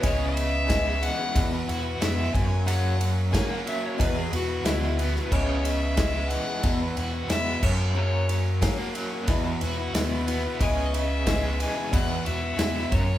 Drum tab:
CC |----------------|----------------|x-------------x-|----------------|
RD |x-x-x-x-x-x-x-x-|x-x-x-x-x-x-x-x-|--x-x-x-x-x-x---|--x-x-x-x-x-x-x-|
SD |----o-------o---|----o-------o--o|----o-------o---|----o-------o---|
BD |o---o---o-----o-|----o---o-------|o---o---o-----o-|----o---o-------|

CC |----------------|
RD |x-x-x-x-x-x-x-x-|
SD |----o-------o---|
BD |o---o---o-----o-|